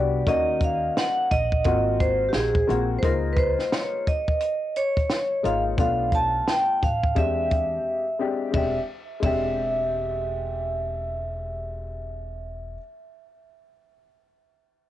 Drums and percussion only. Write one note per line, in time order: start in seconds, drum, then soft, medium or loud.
0.27 kick loud
0.27 closed hi-hat medium
0.61 kick medium
0.61 closed hi-hat medium
0.97 snare medium
0.97 closed hi-hat medium
1.32 kick medium
1.32 closed hi-hat medium
1.52 kick medium
1.64 kick medium
1.64 closed hi-hat medium
2.00 kick medium
2.00 closed hi-hat medium
2.33 snare medium
2.33 closed hi-hat medium
2.55 kick medium
2.70 closed hi-hat medium
3.03 kick loud
3.03 closed hi-hat medium
3.37 kick medium
3.37 closed hi-hat medium
3.59 snare soft
3.72 snare loud
3.72 closed hi-hat medium
4.07 kick medium
4.07 closed hi-hat medium
4.28 kick medium
4.40 closed hi-hat medium
4.76 closed hi-hat medium
4.97 kick medium
4.97 closed hi-hat soft
5.10 snare medium
5.10 closed hi-hat medium
5.45 closed hi-hat medium
5.78 kick loud
5.78 closed hi-hat medium
6.12 kick medium
6.12 closed hi-hat medium
6.48 snare medium
6.48 closed hi-hat medium
6.83 kick medium
6.83 closed hi-hat medium
7.04 kick medium
7.16 kick medium
7.16 closed hi-hat medium
7.51 kick medium
7.51 closed hi-hat medium
8.54 kick medium
8.54 ride medium
9.23 kick medium
9.23 ride medium